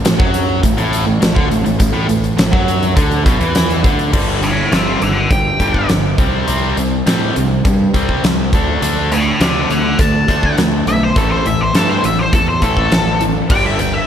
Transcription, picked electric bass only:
0, 0, Header, 1, 2, 480
1, 0, Start_track
1, 0, Tempo, 585366
1, 1480, Time_signature, 4, 2, 24, 8
1, 11536, End_track
2, 0, Start_track
2, 0, Title_t, "Picked electric bass"
2, 0, Program_c, 0, 34
2, 47, Note_on_c, 0, 33, 89
2, 155, Note_off_c, 0, 33, 0
2, 160, Note_on_c, 0, 42, 104
2, 496, Note_off_c, 0, 42, 0
2, 519, Note_on_c, 0, 33, 79
2, 633, Note_off_c, 0, 33, 0
2, 647, Note_on_c, 0, 33, 94
2, 868, Note_off_c, 0, 33, 0
2, 881, Note_on_c, 0, 33, 75
2, 993, Note_off_c, 0, 33, 0
2, 997, Note_on_c, 0, 33, 84
2, 1111, Note_off_c, 0, 33, 0
2, 1119, Note_on_c, 0, 38, 91
2, 1231, Note_off_c, 0, 38, 0
2, 1237, Note_on_c, 0, 33, 88
2, 1350, Note_off_c, 0, 33, 0
2, 1358, Note_on_c, 0, 33, 83
2, 1471, Note_off_c, 0, 33, 0
2, 1474, Note_on_c, 0, 33, 80
2, 1588, Note_off_c, 0, 33, 0
2, 1600, Note_on_c, 0, 33, 88
2, 1711, Note_off_c, 0, 33, 0
2, 1718, Note_on_c, 0, 33, 80
2, 1941, Note_off_c, 0, 33, 0
2, 1955, Note_on_c, 0, 33, 83
2, 2068, Note_off_c, 0, 33, 0
2, 2074, Note_on_c, 0, 42, 101
2, 2410, Note_off_c, 0, 42, 0
2, 2431, Note_on_c, 0, 38, 91
2, 2657, Note_off_c, 0, 38, 0
2, 2670, Note_on_c, 0, 35, 95
2, 2785, Note_off_c, 0, 35, 0
2, 2793, Note_on_c, 0, 40, 90
2, 3129, Note_off_c, 0, 40, 0
2, 3152, Note_on_c, 0, 38, 95
2, 3377, Note_off_c, 0, 38, 0
2, 3389, Note_on_c, 0, 31, 101
2, 3777, Note_off_c, 0, 31, 0
2, 3869, Note_on_c, 0, 31, 87
2, 4065, Note_off_c, 0, 31, 0
2, 4113, Note_on_c, 0, 31, 79
2, 4307, Note_off_c, 0, 31, 0
2, 4350, Note_on_c, 0, 31, 86
2, 4545, Note_off_c, 0, 31, 0
2, 4591, Note_on_c, 0, 31, 83
2, 4785, Note_off_c, 0, 31, 0
2, 4836, Note_on_c, 0, 31, 84
2, 5029, Note_off_c, 0, 31, 0
2, 5068, Note_on_c, 0, 36, 84
2, 5264, Note_off_c, 0, 36, 0
2, 5315, Note_on_c, 0, 36, 98
2, 5508, Note_off_c, 0, 36, 0
2, 5551, Note_on_c, 0, 36, 87
2, 5746, Note_off_c, 0, 36, 0
2, 5794, Note_on_c, 0, 45, 88
2, 5988, Note_off_c, 0, 45, 0
2, 6039, Note_on_c, 0, 36, 82
2, 6231, Note_off_c, 0, 36, 0
2, 6273, Note_on_c, 0, 43, 85
2, 6468, Note_off_c, 0, 43, 0
2, 6511, Note_on_c, 0, 36, 86
2, 6706, Note_off_c, 0, 36, 0
2, 6754, Note_on_c, 0, 36, 92
2, 6993, Note_off_c, 0, 36, 0
2, 6993, Note_on_c, 0, 38, 100
2, 7188, Note_off_c, 0, 38, 0
2, 7233, Note_on_c, 0, 38, 98
2, 7621, Note_off_c, 0, 38, 0
2, 7712, Note_on_c, 0, 38, 93
2, 7908, Note_off_c, 0, 38, 0
2, 7953, Note_on_c, 0, 38, 81
2, 8148, Note_off_c, 0, 38, 0
2, 8193, Note_on_c, 0, 38, 83
2, 8388, Note_off_c, 0, 38, 0
2, 8432, Note_on_c, 0, 38, 93
2, 8628, Note_off_c, 0, 38, 0
2, 8673, Note_on_c, 0, 38, 89
2, 8868, Note_off_c, 0, 38, 0
2, 8912, Note_on_c, 0, 35, 90
2, 9108, Note_off_c, 0, 35, 0
2, 9152, Note_on_c, 0, 33, 91
2, 9348, Note_off_c, 0, 33, 0
2, 9389, Note_on_c, 0, 33, 86
2, 9586, Note_off_c, 0, 33, 0
2, 9626, Note_on_c, 0, 43, 88
2, 9824, Note_off_c, 0, 43, 0
2, 9868, Note_on_c, 0, 33, 78
2, 10066, Note_off_c, 0, 33, 0
2, 10110, Note_on_c, 0, 40, 83
2, 10307, Note_off_c, 0, 40, 0
2, 10351, Note_on_c, 0, 33, 77
2, 10547, Note_off_c, 0, 33, 0
2, 10591, Note_on_c, 0, 33, 90
2, 10980, Note_off_c, 0, 33, 0
2, 11067, Note_on_c, 0, 31, 91
2, 11458, Note_off_c, 0, 31, 0
2, 11536, End_track
0, 0, End_of_file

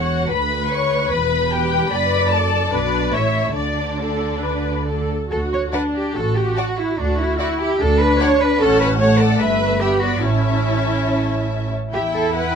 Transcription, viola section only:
0, 0, Header, 1, 2, 480
1, 0, Start_track
1, 0, Key_signature, 2, "major"
1, 0, Tempo, 406504
1, 354, Time_signature, 4, 2, 24, 8
1, 3709, Tempo, 432277
1, 6589, Tempo, 408719
1, 11389, Tempo, 422535
1, 14490, End_track
2, 0, Start_track
2, 0, Title_t, "Viola section"
2, 0, Program_c, 0, 48
2, 0, Note_on_c, 0, 73, 59
2, 350, Note_on_c, 0, 71, 63
2, 357, Note_off_c, 0, 73, 0
2, 1763, Note_off_c, 0, 71, 0
2, 1776, Note_on_c, 0, 71, 64
2, 2249, Note_off_c, 0, 71, 0
2, 2264, Note_on_c, 0, 74, 78
2, 3202, Note_off_c, 0, 74, 0
2, 3222, Note_on_c, 0, 71, 69
2, 3697, Note_off_c, 0, 71, 0
2, 3698, Note_on_c, 0, 73, 68
2, 4173, Note_off_c, 0, 73, 0
2, 4183, Note_on_c, 0, 74, 56
2, 4604, Note_off_c, 0, 74, 0
2, 4659, Note_on_c, 0, 69, 60
2, 5111, Note_off_c, 0, 69, 0
2, 5134, Note_on_c, 0, 71, 58
2, 5626, Note_on_c, 0, 69, 54
2, 5628, Note_off_c, 0, 71, 0
2, 6104, Note_off_c, 0, 69, 0
2, 6116, Note_on_c, 0, 66, 65
2, 6554, Note_off_c, 0, 66, 0
2, 6578, Note_on_c, 0, 62, 65
2, 7073, Note_off_c, 0, 62, 0
2, 7081, Note_on_c, 0, 66, 68
2, 8032, Note_off_c, 0, 66, 0
2, 8046, Note_on_c, 0, 66, 66
2, 8522, Note_off_c, 0, 66, 0
2, 8526, Note_on_c, 0, 64, 75
2, 9011, Note_off_c, 0, 64, 0
2, 9022, Note_on_c, 0, 62, 77
2, 9947, Note_off_c, 0, 62, 0
2, 9968, Note_on_c, 0, 61, 81
2, 10427, Note_on_c, 0, 57, 74
2, 10436, Note_off_c, 0, 61, 0
2, 11371, Note_on_c, 0, 59, 72
2, 11386, Note_off_c, 0, 57, 0
2, 11847, Note_off_c, 0, 59, 0
2, 11856, Note_on_c, 0, 61, 64
2, 13547, Note_off_c, 0, 61, 0
2, 13783, Note_on_c, 0, 64, 69
2, 14490, Note_off_c, 0, 64, 0
2, 14490, End_track
0, 0, End_of_file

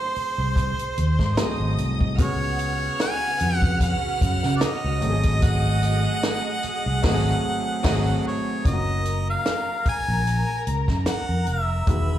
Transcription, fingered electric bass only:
0, 0, Header, 1, 3, 480
1, 0, Start_track
1, 0, Key_signature, 6, "major"
1, 0, Tempo, 808625
1, 1296, Time_signature, 4, 2, 24, 8
1, 7234, End_track
2, 0, Start_track
2, 0, Title_t, "Fingered electric bass"
2, 0, Program_c, 0, 33
2, 227, Note_on_c, 0, 36, 82
2, 431, Note_off_c, 0, 36, 0
2, 581, Note_on_c, 0, 39, 83
2, 690, Note_off_c, 0, 39, 0
2, 709, Note_on_c, 0, 44, 91
2, 802, Note_off_c, 0, 44, 0
2, 949, Note_on_c, 0, 32, 89
2, 1042, Note_off_c, 0, 32, 0
2, 1061, Note_on_c, 0, 36, 81
2, 1299, Note_off_c, 0, 36, 0
2, 1299, Note_on_c, 0, 37, 96
2, 1710, Note_off_c, 0, 37, 0
2, 2024, Note_on_c, 0, 41, 93
2, 2338, Note_off_c, 0, 41, 0
2, 2503, Note_on_c, 0, 42, 83
2, 2612, Note_off_c, 0, 42, 0
2, 2637, Note_on_c, 0, 49, 90
2, 2728, Note_off_c, 0, 49, 0
2, 2875, Note_on_c, 0, 37, 82
2, 2967, Note_off_c, 0, 37, 0
2, 2984, Note_on_c, 0, 32, 90
2, 3598, Note_off_c, 0, 32, 0
2, 4073, Note_on_c, 0, 36, 92
2, 4165, Note_off_c, 0, 36, 0
2, 4180, Note_on_c, 0, 32, 97
2, 4345, Note_off_c, 0, 32, 0
2, 4659, Note_on_c, 0, 32, 97
2, 4824, Note_off_c, 0, 32, 0
2, 5137, Note_on_c, 0, 30, 100
2, 5547, Note_off_c, 0, 30, 0
2, 5986, Note_on_c, 0, 34, 86
2, 6190, Note_off_c, 0, 34, 0
2, 6334, Note_on_c, 0, 37, 77
2, 6444, Note_off_c, 0, 37, 0
2, 6460, Note_on_c, 0, 42, 88
2, 6555, Note_off_c, 0, 42, 0
2, 6702, Note_on_c, 0, 41, 81
2, 6796, Note_off_c, 0, 41, 0
2, 6812, Note_on_c, 0, 29, 85
2, 7017, Note_off_c, 0, 29, 0
2, 7050, Note_on_c, 0, 28, 102
2, 7234, Note_off_c, 0, 28, 0
2, 7234, End_track
3, 0, Start_track
3, 0, Title_t, "Muted fingered electric bass strokes"
3, 98, Note_on_c, 9, 29, 47
3, 158, Note_off_c, 9, 29, 0
3, 3942, Note_on_c, 9, 29, 49
3, 4002, Note_off_c, 9, 29, 0
3, 5853, Note_on_c, 9, 29, 44
3, 5913, Note_off_c, 9, 29, 0
3, 7234, End_track
0, 0, End_of_file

